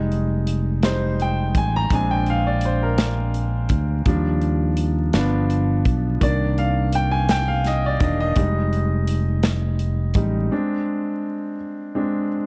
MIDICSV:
0, 0, Header, 1, 4, 480
1, 0, Start_track
1, 0, Tempo, 716846
1, 1279, Time_signature, 6, 3, 24, 8
1, 8345, End_track
2, 0, Start_track
2, 0, Title_t, "Grand piano"
2, 0, Program_c, 0, 0
2, 0, Control_c, 0, 64, 127
2, 0, Note_on_c, 0, 55, 45
2, 0, Note_on_c, 0, 56, 47
2, 0, Note_on_c, 0, 63, 57
2, 158, Note_off_c, 0, 55, 0
2, 161, Note_off_c, 0, 56, 0
2, 162, Note_off_c, 0, 63, 0
2, 558, Note_on_c, 0, 55, 46
2, 563, Note_on_c, 0, 63, 50
2, 564, Note_on_c, 0, 56, 41
2, 567, Note_on_c, 0, 72, 89
2, 774, Note_off_c, 0, 55, 0
2, 777, Note_off_c, 0, 56, 0
2, 777, Note_off_c, 0, 63, 0
2, 809, Note_off_c, 0, 72, 0
2, 816, Note_on_c, 0, 79, 79
2, 1054, Note_off_c, 0, 79, 0
2, 1054, Note_on_c, 0, 80, 82
2, 1170, Note_off_c, 0, 80, 0
2, 1180, Note_on_c, 0, 82, 93
2, 1284, Note_on_c, 0, 56, 45
2, 1287, Control_c, 0, 64, 0
2, 1287, Note_on_c, 0, 60, 46
2, 1292, Note_on_c, 0, 62, 51
2, 1293, Note_off_c, 0, 82, 0
2, 1303, Note_on_c, 0, 80, 89
2, 1412, Note_on_c, 0, 79, 79
2, 1415, Note_off_c, 0, 80, 0
2, 1419, Control_c, 0, 64, 127
2, 1529, Note_off_c, 0, 79, 0
2, 1539, Note_on_c, 0, 77, 85
2, 1652, Note_on_c, 0, 74, 74
2, 1653, Note_off_c, 0, 77, 0
2, 1769, Note_off_c, 0, 74, 0
2, 1777, Note_on_c, 0, 72, 71
2, 1892, Note_off_c, 0, 72, 0
2, 1894, Note_on_c, 0, 70, 71
2, 1976, Note_off_c, 0, 56, 0
2, 1978, Note_off_c, 0, 60, 0
2, 1980, Note_off_c, 0, 62, 0
2, 2716, Note_on_c, 0, 53, 51
2, 2720, Note_on_c, 0, 55, 43
2, 2726, Note_on_c, 0, 62, 56
2, 2731, Control_c, 0, 64, 0
2, 2830, Control_c, 0, 64, 127
2, 3062, Note_off_c, 0, 70, 0
2, 3413, Note_off_c, 0, 53, 0
2, 3415, Note_off_c, 0, 55, 0
2, 3418, Note_off_c, 0, 62, 0
2, 3437, Note_on_c, 0, 53, 54
2, 3440, Note_on_c, 0, 59, 50
2, 3447, Note_on_c, 0, 62, 61
2, 3451, Control_c, 0, 64, 0
2, 3552, Control_c, 0, 64, 127
2, 4133, Note_off_c, 0, 53, 0
2, 4135, Note_off_c, 0, 59, 0
2, 4138, Note_off_c, 0, 62, 0
2, 4156, Note_on_c, 0, 51, 52
2, 4162, Note_on_c, 0, 58, 44
2, 4166, Note_on_c, 0, 62, 54
2, 4170, Note_on_c, 0, 74, 79
2, 4172, Control_c, 0, 64, 0
2, 4288, Control_c, 0, 64, 127
2, 4408, Note_on_c, 0, 77, 84
2, 4413, Note_off_c, 0, 74, 0
2, 4478, Note_off_c, 0, 51, 0
2, 4481, Note_off_c, 0, 58, 0
2, 4483, Note_off_c, 0, 62, 0
2, 4652, Note_off_c, 0, 77, 0
2, 4654, Note_on_c, 0, 79, 86
2, 4763, Note_on_c, 0, 80, 92
2, 4772, Note_off_c, 0, 79, 0
2, 4886, Note_off_c, 0, 80, 0
2, 4892, Note_on_c, 0, 79, 98
2, 5008, Note_on_c, 0, 77, 89
2, 5011, Note_off_c, 0, 79, 0
2, 5128, Note_off_c, 0, 77, 0
2, 5135, Note_on_c, 0, 75, 78
2, 5241, Note_off_c, 0, 75, 0
2, 5264, Note_on_c, 0, 74, 74
2, 5356, Note_on_c, 0, 58, 43
2, 5357, Note_on_c, 0, 51, 41
2, 5360, Note_on_c, 0, 62, 52
2, 5376, Note_off_c, 0, 74, 0
2, 5380, Note_on_c, 0, 75, 79
2, 5483, Note_off_c, 0, 75, 0
2, 5493, Note_on_c, 0, 75, 94
2, 5574, Note_off_c, 0, 58, 0
2, 5575, Note_off_c, 0, 51, 0
2, 5577, Note_off_c, 0, 62, 0
2, 5597, Note_on_c, 0, 55, 49
2, 5603, Note_on_c, 0, 56, 46
2, 5607, Note_on_c, 0, 63, 56
2, 5611, Control_c, 0, 64, 0
2, 5733, Control_c, 0, 64, 127
2, 6659, Note_off_c, 0, 75, 0
2, 6788, Note_off_c, 0, 55, 0
2, 6789, Note_off_c, 0, 56, 0
2, 6789, Note_off_c, 0, 63, 0
2, 6798, Note_on_c, 0, 55, 45
2, 6799, Note_on_c, 0, 56, 42
2, 6799, Note_on_c, 0, 63, 49
2, 7015, Note_off_c, 0, 55, 0
2, 7015, Note_off_c, 0, 56, 0
2, 7015, Note_off_c, 0, 63, 0
2, 7038, Note_on_c, 0, 56, 48
2, 7041, Note_on_c, 0, 60, 44
2, 7044, Note_on_c, 0, 62, 60
2, 7049, Control_c, 0, 64, 0
2, 7183, Control_c, 0, 64, 127
2, 7730, Note_off_c, 0, 56, 0
2, 7732, Note_off_c, 0, 60, 0
2, 7733, Note_off_c, 0, 62, 0
2, 8002, Note_on_c, 0, 56, 46
2, 8002, Note_on_c, 0, 60, 42
2, 8009, Note_on_c, 0, 62, 51
2, 8215, Note_off_c, 0, 56, 0
2, 8215, Note_off_c, 0, 60, 0
2, 8219, Note_off_c, 0, 62, 0
2, 8345, End_track
3, 0, Start_track
3, 0, Title_t, "Fingered electric bass"
3, 0, Program_c, 1, 33
3, 0, Note_on_c, 1, 29, 86
3, 1013, Note_off_c, 1, 29, 0
3, 1038, Note_on_c, 1, 33, 80
3, 1260, Note_off_c, 1, 33, 0
3, 1277, Note_on_c, 1, 34, 80
3, 2453, Note_off_c, 1, 34, 0
3, 2479, Note_on_c, 1, 38, 84
3, 2701, Note_off_c, 1, 38, 0
3, 2718, Note_on_c, 1, 39, 82
3, 3414, Note_off_c, 1, 39, 0
3, 3445, Note_on_c, 1, 31, 99
3, 3897, Note_off_c, 1, 31, 0
3, 3920, Note_on_c, 1, 35, 96
3, 4142, Note_off_c, 1, 35, 0
3, 4162, Note_on_c, 1, 36, 82
3, 5335, Note_off_c, 1, 36, 0
3, 5360, Note_on_c, 1, 28, 86
3, 5581, Note_off_c, 1, 28, 0
3, 5599, Note_on_c, 1, 29, 97
3, 6772, Note_off_c, 1, 29, 0
3, 6797, Note_on_c, 1, 33, 106
3, 7019, Note_off_c, 1, 33, 0
3, 8345, End_track
4, 0, Start_track
4, 0, Title_t, "Drums"
4, 78, Note_on_c, 9, 42, 36
4, 145, Note_off_c, 9, 42, 0
4, 315, Note_on_c, 9, 42, 76
4, 382, Note_off_c, 9, 42, 0
4, 554, Note_on_c, 9, 42, 64
4, 558, Note_on_c, 9, 38, 86
4, 621, Note_off_c, 9, 42, 0
4, 625, Note_off_c, 9, 38, 0
4, 801, Note_on_c, 9, 42, 48
4, 868, Note_off_c, 9, 42, 0
4, 1036, Note_on_c, 9, 36, 85
4, 1038, Note_on_c, 9, 42, 66
4, 1103, Note_off_c, 9, 36, 0
4, 1105, Note_off_c, 9, 42, 0
4, 1275, Note_on_c, 9, 36, 92
4, 1275, Note_on_c, 9, 42, 81
4, 1342, Note_off_c, 9, 36, 0
4, 1342, Note_off_c, 9, 42, 0
4, 1516, Note_on_c, 9, 42, 34
4, 1583, Note_off_c, 9, 42, 0
4, 1748, Note_on_c, 9, 42, 74
4, 1815, Note_off_c, 9, 42, 0
4, 1995, Note_on_c, 9, 42, 72
4, 1998, Note_on_c, 9, 38, 101
4, 2062, Note_off_c, 9, 42, 0
4, 2065, Note_off_c, 9, 38, 0
4, 2238, Note_on_c, 9, 42, 49
4, 2304, Note_off_c, 9, 42, 0
4, 2470, Note_on_c, 9, 42, 69
4, 2476, Note_on_c, 9, 36, 89
4, 2537, Note_off_c, 9, 42, 0
4, 2543, Note_off_c, 9, 36, 0
4, 2716, Note_on_c, 9, 42, 75
4, 2717, Note_on_c, 9, 36, 96
4, 2783, Note_off_c, 9, 42, 0
4, 2784, Note_off_c, 9, 36, 0
4, 2956, Note_on_c, 9, 42, 34
4, 3023, Note_off_c, 9, 42, 0
4, 3193, Note_on_c, 9, 42, 77
4, 3260, Note_off_c, 9, 42, 0
4, 3437, Note_on_c, 9, 42, 72
4, 3440, Note_on_c, 9, 38, 94
4, 3504, Note_off_c, 9, 42, 0
4, 3507, Note_off_c, 9, 38, 0
4, 3682, Note_on_c, 9, 42, 48
4, 3749, Note_off_c, 9, 42, 0
4, 3919, Note_on_c, 9, 42, 67
4, 3920, Note_on_c, 9, 36, 87
4, 3986, Note_off_c, 9, 42, 0
4, 3987, Note_off_c, 9, 36, 0
4, 4160, Note_on_c, 9, 36, 89
4, 4162, Note_on_c, 9, 42, 77
4, 4227, Note_off_c, 9, 36, 0
4, 4229, Note_off_c, 9, 42, 0
4, 4405, Note_on_c, 9, 42, 38
4, 4472, Note_off_c, 9, 42, 0
4, 4637, Note_on_c, 9, 42, 80
4, 4704, Note_off_c, 9, 42, 0
4, 4879, Note_on_c, 9, 42, 72
4, 4882, Note_on_c, 9, 38, 93
4, 4946, Note_off_c, 9, 42, 0
4, 4949, Note_off_c, 9, 38, 0
4, 5119, Note_on_c, 9, 42, 48
4, 5124, Note_on_c, 9, 38, 33
4, 5186, Note_off_c, 9, 42, 0
4, 5191, Note_off_c, 9, 38, 0
4, 5359, Note_on_c, 9, 42, 69
4, 5360, Note_on_c, 9, 36, 96
4, 5426, Note_off_c, 9, 42, 0
4, 5427, Note_off_c, 9, 36, 0
4, 5595, Note_on_c, 9, 42, 77
4, 5600, Note_on_c, 9, 36, 96
4, 5662, Note_off_c, 9, 42, 0
4, 5667, Note_off_c, 9, 36, 0
4, 5844, Note_on_c, 9, 42, 41
4, 5911, Note_off_c, 9, 42, 0
4, 6076, Note_on_c, 9, 42, 75
4, 6143, Note_off_c, 9, 42, 0
4, 6314, Note_on_c, 9, 42, 75
4, 6318, Note_on_c, 9, 38, 98
4, 6381, Note_off_c, 9, 42, 0
4, 6385, Note_off_c, 9, 38, 0
4, 6556, Note_on_c, 9, 42, 49
4, 6623, Note_off_c, 9, 42, 0
4, 6789, Note_on_c, 9, 42, 71
4, 6797, Note_on_c, 9, 36, 94
4, 6856, Note_off_c, 9, 42, 0
4, 6864, Note_off_c, 9, 36, 0
4, 8345, End_track
0, 0, End_of_file